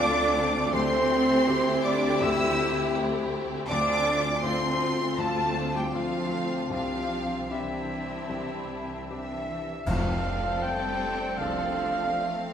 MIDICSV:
0, 0, Header, 1, 12, 480
1, 0, Start_track
1, 0, Tempo, 738916
1, 479, Time_signature, 4, 2, 24, 8
1, 3361, Tempo, 768246
1, 4321, Tempo, 789474
1, 6241, Tempo, 765306
1, 7912, End_track
2, 0, Start_track
2, 0, Title_t, "Flute"
2, 0, Program_c, 0, 73
2, 0, Note_on_c, 0, 86, 127
2, 477, Note_on_c, 0, 84, 127
2, 487, Note_off_c, 0, 86, 0
2, 1192, Note_off_c, 0, 84, 0
2, 1196, Note_on_c, 0, 86, 113
2, 1447, Note_on_c, 0, 88, 116
2, 1457, Note_off_c, 0, 86, 0
2, 1919, Note_off_c, 0, 88, 0
2, 2402, Note_on_c, 0, 86, 127
2, 2850, Note_off_c, 0, 86, 0
2, 2883, Note_on_c, 0, 84, 108
2, 3355, Note_off_c, 0, 84, 0
2, 3362, Note_on_c, 0, 81, 96
2, 3722, Note_on_c, 0, 79, 80
2, 3732, Note_off_c, 0, 81, 0
2, 3832, Note_on_c, 0, 77, 71
2, 3842, Note_off_c, 0, 79, 0
2, 4305, Note_off_c, 0, 77, 0
2, 4309, Note_on_c, 0, 77, 96
2, 4789, Note_off_c, 0, 77, 0
2, 4807, Note_on_c, 0, 76, 69
2, 5750, Note_off_c, 0, 76, 0
2, 7912, End_track
3, 0, Start_track
3, 0, Title_t, "Violin section"
3, 0, Program_c, 1, 48
3, 0, Note_on_c, 1, 86, 127
3, 472, Note_on_c, 1, 84, 127
3, 475, Note_off_c, 1, 86, 0
3, 1178, Note_off_c, 1, 84, 0
3, 1194, Note_on_c, 1, 86, 108
3, 1430, Note_on_c, 1, 88, 121
3, 1436, Note_off_c, 1, 86, 0
3, 1911, Note_off_c, 1, 88, 0
3, 2390, Note_on_c, 1, 86, 127
3, 2844, Note_off_c, 1, 86, 0
3, 2875, Note_on_c, 1, 84, 119
3, 3361, Note_off_c, 1, 84, 0
3, 3367, Note_on_c, 1, 81, 115
3, 3722, Note_off_c, 1, 81, 0
3, 3731, Note_on_c, 1, 79, 90
3, 3842, Note_on_c, 1, 77, 101
3, 3844, Note_off_c, 1, 79, 0
3, 4320, Note_off_c, 1, 77, 0
3, 4327, Note_on_c, 1, 77, 100
3, 4798, Note_off_c, 1, 77, 0
3, 4803, Note_on_c, 1, 76, 73
3, 5757, Note_off_c, 1, 76, 0
3, 5764, Note_on_c, 1, 76, 83
3, 6213, Note_off_c, 1, 76, 0
3, 6239, Note_on_c, 1, 77, 95
3, 6717, Note_on_c, 1, 79, 101
3, 6719, Note_off_c, 1, 77, 0
3, 7190, Note_on_c, 1, 77, 97
3, 7198, Note_off_c, 1, 79, 0
3, 7900, Note_off_c, 1, 77, 0
3, 7912, End_track
4, 0, Start_track
4, 0, Title_t, "Cor anglais"
4, 0, Program_c, 2, 69
4, 0, Note_on_c, 2, 74, 125
4, 479, Note_on_c, 2, 72, 127
4, 488, Note_off_c, 2, 74, 0
4, 1193, Note_off_c, 2, 72, 0
4, 1197, Note_on_c, 2, 74, 108
4, 1448, Note_on_c, 2, 76, 100
4, 1458, Note_off_c, 2, 74, 0
4, 1920, Note_off_c, 2, 76, 0
4, 2396, Note_on_c, 2, 74, 118
4, 2878, Note_on_c, 2, 72, 99
4, 2888, Note_off_c, 2, 74, 0
4, 3358, Note_off_c, 2, 72, 0
4, 3362, Note_on_c, 2, 69, 85
4, 3728, Note_on_c, 2, 67, 75
4, 3737, Note_off_c, 2, 69, 0
4, 3845, Note_on_c, 2, 65, 77
4, 3855, Note_off_c, 2, 67, 0
4, 4315, Note_off_c, 2, 65, 0
4, 4318, Note_on_c, 2, 65, 84
4, 4805, Note_on_c, 2, 64, 69
4, 4814, Note_off_c, 2, 65, 0
4, 5765, Note_off_c, 2, 64, 0
4, 5769, Note_on_c, 2, 76, 84
4, 6243, Note_on_c, 2, 77, 106
4, 6253, Note_off_c, 2, 76, 0
4, 6718, Note_on_c, 2, 79, 97
4, 6727, Note_off_c, 2, 77, 0
4, 7193, Note_on_c, 2, 77, 112
4, 7202, Note_off_c, 2, 79, 0
4, 7805, Note_off_c, 2, 77, 0
4, 7912, End_track
5, 0, Start_track
5, 0, Title_t, "French horn section"
5, 0, Program_c, 3, 60
5, 0, Note_on_c, 3, 60, 117
5, 0, Note_on_c, 3, 65, 109
5, 454, Note_off_c, 3, 65, 0
5, 476, Note_on_c, 3, 67, 118
5, 2368, Note_off_c, 3, 67, 0
5, 2371, Note_off_c, 3, 60, 0
5, 2395, Note_on_c, 3, 60, 96
5, 2397, Note_on_c, 3, 65, 105
5, 4217, Note_off_c, 3, 65, 0
5, 4323, Note_on_c, 3, 62, 79
5, 6015, Note_off_c, 3, 60, 0
5, 6017, Note_off_c, 3, 62, 0
5, 6240, Note_on_c, 3, 57, 81
5, 6242, Note_on_c, 3, 62, 79
5, 7912, Note_off_c, 3, 57, 0
5, 7912, Note_off_c, 3, 62, 0
5, 7912, End_track
6, 0, Start_track
6, 0, Title_t, "Violin section"
6, 0, Program_c, 4, 48
6, 0, Note_on_c, 4, 65, 95
6, 0, Note_on_c, 4, 69, 100
6, 456, Note_off_c, 4, 65, 0
6, 456, Note_off_c, 4, 69, 0
6, 483, Note_on_c, 4, 67, 93
6, 485, Note_on_c, 4, 64, 104
6, 2372, Note_off_c, 4, 67, 0
6, 2373, Note_off_c, 4, 64, 0
6, 2400, Note_on_c, 4, 62, 83
6, 2400, Note_on_c, 4, 65, 91
6, 2849, Note_off_c, 4, 62, 0
6, 2849, Note_off_c, 4, 65, 0
6, 2872, Note_on_c, 4, 62, 75
6, 2874, Note_on_c, 4, 65, 79
6, 3347, Note_off_c, 4, 65, 0
6, 3350, Note_off_c, 4, 62, 0
6, 3355, Note_on_c, 4, 65, 80
6, 3358, Note_on_c, 4, 62, 83
6, 3826, Note_off_c, 4, 65, 0
6, 3828, Note_off_c, 4, 62, 0
6, 3838, Note_on_c, 4, 62, 72
6, 3838, Note_on_c, 4, 65, 70
6, 4311, Note_off_c, 4, 62, 0
6, 4311, Note_off_c, 4, 65, 0
6, 4317, Note_on_c, 4, 67, 76
6, 4320, Note_on_c, 4, 62, 74
6, 4794, Note_off_c, 4, 62, 0
6, 4798, Note_off_c, 4, 67, 0
6, 4805, Note_on_c, 4, 62, 68
6, 4805, Note_on_c, 4, 67, 62
6, 6091, Note_off_c, 4, 67, 0
6, 6092, Note_off_c, 4, 62, 0
6, 6241, Note_on_c, 4, 69, 90
6, 6242, Note_on_c, 4, 57, 81
6, 6352, Note_off_c, 4, 57, 0
6, 6365, Note_on_c, 4, 60, 70
6, 6471, Note_on_c, 4, 62, 72
6, 6482, Note_off_c, 4, 60, 0
6, 6595, Note_off_c, 4, 62, 0
6, 6596, Note_on_c, 4, 60, 62
6, 6717, Note_on_c, 4, 57, 74
6, 6718, Note_off_c, 4, 60, 0
6, 6838, Note_off_c, 4, 57, 0
6, 6845, Note_on_c, 4, 60, 71
6, 6956, Note_on_c, 4, 62, 78
6, 6962, Note_off_c, 4, 60, 0
6, 7077, Note_off_c, 4, 62, 0
6, 7086, Note_on_c, 4, 60, 70
6, 7202, Note_off_c, 4, 60, 0
6, 7203, Note_on_c, 4, 57, 72
6, 7313, Note_off_c, 4, 57, 0
6, 7319, Note_on_c, 4, 60, 78
6, 7441, Note_off_c, 4, 60, 0
6, 7441, Note_on_c, 4, 62, 76
6, 7560, Note_on_c, 4, 60, 69
6, 7562, Note_off_c, 4, 62, 0
6, 7681, Note_off_c, 4, 60, 0
6, 7686, Note_on_c, 4, 57, 80
6, 7796, Note_on_c, 4, 60, 78
6, 7803, Note_off_c, 4, 57, 0
6, 7912, Note_off_c, 4, 60, 0
6, 7912, Note_off_c, 4, 69, 0
6, 7912, End_track
7, 0, Start_track
7, 0, Title_t, "Viola section"
7, 0, Program_c, 5, 48
7, 0, Note_on_c, 5, 57, 96
7, 0, Note_on_c, 5, 60, 87
7, 2370, Note_off_c, 5, 57, 0
7, 2370, Note_off_c, 5, 60, 0
7, 2401, Note_on_c, 5, 57, 82
7, 2402, Note_on_c, 5, 60, 89
7, 2850, Note_off_c, 5, 57, 0
7, 2850, Note_off_c, 5, 60, 0
7, 2877, Note_on_c, 5, 57, 78
7, 2878, Note_on_c, 5, 60, 90
7, 3352, Note_off_c, 5, 57, 0
7, 3353, Note_off_c, 5, 60, 0
7, 3361, Note_on_c, 5, 60, 70
7, 3363, Note_on_c, 5, 57, 75
7, 3829, Note_off_c, 5, 60, 0
7, 3830, Note_off_c, 5, 57, 0
7, 3841, Note_on_c, 5, 60, 68
7, 3842, Note_on_c, 5, 57, 70
7, 4312, Note_off_c, 5, 57, 0
7, 4312, Note_off_c, 5, 60, 0
7, 4324, Note_on_c, 5, 60, 55
7, 4328, Note_off_c, 5, 60, 0
7, 4328, Note_on_c, 5, 60, 63
7, 4798, Note_off_c, 5, 60, 0
7, 4806, Note_on_c, 5, 60, 61
7, 4807, Note_off_c, 5, 60, 0
7, 4807, Note_on_c, 5, 60, 71
7, 6093, Note_off_c, 5, 60, 0
7, 6241, Note_on_c, 5, 60, 65
7, 6242, Note_off_c, 5, 60, 0
7, 6242, Note_on_c, 5, 60, 83
7, 7912, Note_off_c, 5, 60, 0
7, 7912, End_track
8, 0, Start_track
8, 0, Title_t, "Grand piano"
8, 0, Program_c, 6, 0
8, 0, Control_c, 6, 64, 127
8, 0, Note_on_c, 6, 38, 75
8, 0, Note_on_c, 6, 50, 83
8, 0, Note_on_c, 6, 57, 62
8, 0, Note_on_c, 6, 60, 62
8, 0, Note_on_c, 6, 65, 71
8, 450, Note_off_c, 6, 57, 0
8, 451, Note_off_c, 6, 60, 0
8, 453, Note_off_c, 6, 65, 0
8, 455, Note_off_c, 6, 50, 0
8, 456, Note_off_c, 6, 38, 0
8, 477, Note_on_c, 6, 38, 93
8, 477, Note_on_c, 6, 50, 71
8, 491, Control_c, 6, 64, 0
8, 577, Control_c, 6, 64, 127
8, 960, Note_on_c, 6, 60, 65
8, 961, Note_on_c, 6, 57, 66
8, 968, Note_on_c, 6, 67, 73
8, 1410, Note_off_c, 6, 38, 0
8, 1410, Note_off_c, 6, 50, 0
8, 1413, Note_off_c, 6, 57, 0
8, 1413, Note_off_c, 6, 60, 0
8, 1417, Note_off_c, 6, 67, 0
8, 1438, Note_on_c, 6, 50, 81
8, 1440, Note_on_c, 6, 38, 85
8, 1916, Note_on_c, 6, 57, 59
8, 1916, Note_on_c, 6, 60, 59
8, 1919, Note_on_c, 6, 67, 69
8, 2371, Note_off_c, 6, 38, 0
8, 2371, Note_off_c, 6, 50, 0
8, 2371, Note_off_c, 6, 57, 0
8, 2371, Note_off_c, 6, 60, 0
8, 2372, Note_off_c, 6, 67, 0
8, 2405, Note_on_c, 6, 38, 81
8, 2405, Note_on_c, 6, 50, 71
8, 2408, Control_c, 6, 64, 0
8, 2502, Control_c, 6, 64, 127
8, 2879, Note_on_c, 6, 57, 54
8, 2880, Note_on_c, 6, 60, 65
8, 2884, Note_on_c, 6, 65, 64
8, 3337, Note_off_c, 6, 57, 0
8, 3337, Note_off_c, 6, 60, 0
8, 3339, Note_off_c, 6, 38, 0
8, 3339, Note_off_c, 6, 50, 0
8, 3340, Note_off_c, 6, 65, 0
8, 3363, Note_on_c, 6, 50, 68
8, 3367, Note_on_c, 6, 38, 58
8, 3838, Note_on_c, 6, 57, 50
8, 3839, Note_on_c, 6, 60, 48
8, 3842, Note_on_c, 6, 65, 49
8, 4295, Note_off_c, 6, 57, 0
8, 4295, Note_off_c, 6, 60, 0
8, 4297, Note_off_c, 6, 50, 0
8, 4297, Note_off_c, 6, 65, 0
8, 4298, Note_off_c, 6, 38, 0
8, 4314, Note_on_c, 6, 48, 59
8, 4318, Note_on_c, 6, 36, 62
8, 4331, Control_c, 6, 64, 0
8, 4447, Control_c, 6, 64, 127
8, 4801, Note_on_c, 6, 60, 43
8, 4803, Note_on_c, 6, 62, 50
8, 4807, Note_on_c, 6, 67, 49
8, 5262, Note_off_c, 6, 48, 0
8, 5264, Note_off_c, 6, 60, 0
8, 5265, Note_off_c, 6, 36, 0
8, 5265, Note_off_c, 6, 62, 0
8, 5267, Note_off_c, 6, 67, 0
8, 5283, Note_on_c, 6, 36, 56
8, 5283, Note_on_c, 6, 48, 57
8, 5770, Note_on_c, 6, 60, 45
8, 5773, Note_on_c, 6, 62, 43
8, 5778, Note_on_c, 6, 67, 43
8, 6211, Note_off_c, 6, 36, 0
8, 6212, Note_off_c, 6, 48, 0
8, 6216, Note_off_c, 6, 60, 0
8, 6218, Note_off_c, 6, 62, 0
8, 6220, Note_off_c, 6, 67, 0
8, 6242, Note_on_c, 6, 41, 71
8, 6251, Control_c, 6, 64, 0
8, 6341, Control_c, 6, 64, 127
8, 6722, Note_on_c, 6, 60, 57
8, 7205, Note_on_c, 6, 62, 63
8, 7208, Note_on_c, 6, 69, 67
8, 7491, Note_off_c, 6, 60, 0
8, 7912, Note_off_c, 6, 41, 0
8, 7912, Note_off_c, 6, 62, 0
8, 7912, Note_off_c, 6, 69, 0
8, 7912, End_track
9, 0, Start_track
9, 0, Title_t, "Cello section"
9, 0, Program_c, 7, 48
9, 0, Note_on_c, 7, 62, 127
9, 478, Note_off_c, 7, 62, 0
9, 479, Note_on_c, 7, 60, 121
9, 1196, Note_off_c, 7, 60, 0
9, 1203, Note_on_c, 7, 62, 120
9, 1436, Note_off_c, 7, 62, 0
9, 1439, Note_on_c, 7, 64, 110
9, 1915, Note_off_c, 7, 64, 0
9, 2398, Note_on_c, 7, 62, 118
9, 2848, Note_off_c, 7, 62, 0
9, 2878, Note_on_c, 7, 60, 98
9, 3362, Note_off_c, 7, 60, 0
9, 3362, Note_on_c, 7, 57, 91
9, 3718, Note_on_c, 7, 55, 81
9, 3719, Note_off_c, 7, 57, 0
9, 3838, Note_off_c, 7, 55, 0
9, 3840, Note_on_c, 7, 53, 87
9, 4316, Note_off_c, 7, 53, 0
9, 4323, Note_on_c, 7, 53, 85
9, 4796, Note_off_c, 7, 53, 0
9, 4805, Note_on_c, 7, 52, 63
9, 5756, Note_off_c, 7, 52, 0
9, 5763, Note_on_c, 7, 52, 78
9, 6213, Note_off_c, 7, 52, 0
9, 6241, Note_on_c, 7, 53, 79
9, 6720, Note_off_c, 7, 53, 0
9, 6722, Note_on_c, 7, 55, 100
9, 7200, Note_off_c, 7, 55, 0
9, 7201, Note_on_c, 7, 53, 96
9, 7912, Note_off_c, 7, 53, 0
9, 7912, End_track
10, 0, Start_track
10, 0, Title_t, "Timpani"
10, 0, Program_c, 8, 47
10, 6243, Note_on_c, 8, 41, 113
10, 6936, Note_off_c, 8, 41, 0
10, 7912, End_track
11, 0, Start_track
11, 0, Title_t, "Double bass section"
11, 0, Program_c, 10, 48
11, 0, Note_on_c, 10, 38, 98
11, 2368, Note_off_c, 10, 38, 0
11, 2399, Note_on_c, 10, 38, 91
11, 4296, Note_off_c, 10, 38, 0
11, 4323, Note_on_c, 10, 36, 76
11, 6092, Note_off_c, 10, 36, 0
11, 6235, Note_on_c, 10, 29, 81
11, 6637, Note_off_c, 10, 29, 0
11, 7194, Note_on_c, 10, 36, 90
11, 7599, Note_off_c, 10, 36, 0
11, 7912, End_track
12, 0, Start_track
12, 0, Title_t, "Drums"
12, 6239, Note_on_c, 9, 35, 67
12, 6239, Note_on_c, 9, 49, 66
12, 6302, Note_off_c, 9, 35, 0
12, 6302, Note_off_c, 9, 49, 0
12, 7912, End_track
0, 0, End_of_file